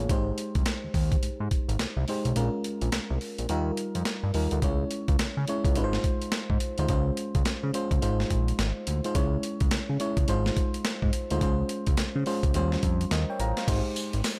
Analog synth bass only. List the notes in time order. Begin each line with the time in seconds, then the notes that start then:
0.10 G#1
0.55 C2
0.84 D#2
0.94 D#2
1.23 G#2
1.40 G#2
1.68 G#1
1.79 C2
1.97 C2
2.25 B1
2.36 A#1
2.82 A#1
2.93 C2
3.10 C2
3.39 A#1
3.49 D#2
3.95 F2
4.23 G2
4.34 D#2
4.52 D2
4.62 C#2
5.08 C#2
5.19 C#3
5.37 C#3
5.65 C#2
5.76 G#1
6.50 G#2
6.79 D2
6.89 C#2
7.35 C#2
7.46 C#3
7.63 C#3
7.91 C#2
8.02 G#1
8.31 A#1
8.59 G#1
8.87 D2
9.15 C#2
9.61 C#2
9.72 C#3
9.89 C#3
10.17 C#2
10.28 G#1
11.03 G#2
11.31 D2
11.41 C#2
11.87 C#2
11.98 C#3
12.15 C#3
12.43 C#2
12.54 D#2
12.83 F2
13.12 D#2
13.39 A1
13.68 G#1
14.14 G#1